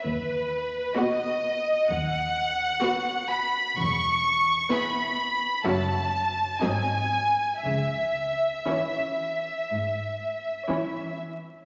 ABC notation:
X:1
M:4/4
L:1/8
Q:1/4=63
K:C#m
V:1 name="Violin section"
B2 d2 f3 b | c'2 b2 a2 g2 | e6- e z |]
V:2 name="Violin section"
z2 [FB]2 z2 [FB]2 | z2 [GB]2 [Fe]2 [Dd]2 | z2 [Ec]2 z2 [Ec]2 |]
V:3 name="Viola section"
z2 [B,F]2 z2 [B,F]2 | z2 [B,E]2 [F,C]2 [F,^B,]2 | z2 [E,C]2 z2 [E,C]2 |]
V:4 name="Cello section" clef=bass
D,,2 z2 D,,2 z2 | E,,2 z2 F,,2 G,,2 | C,2 z2 G,,2 z2 |]
V:5 name="Double bass section" clef=bass
D,,2 z6 | E,,,2 z2 F,,,2 G,,,2 | C,,2 z6 |]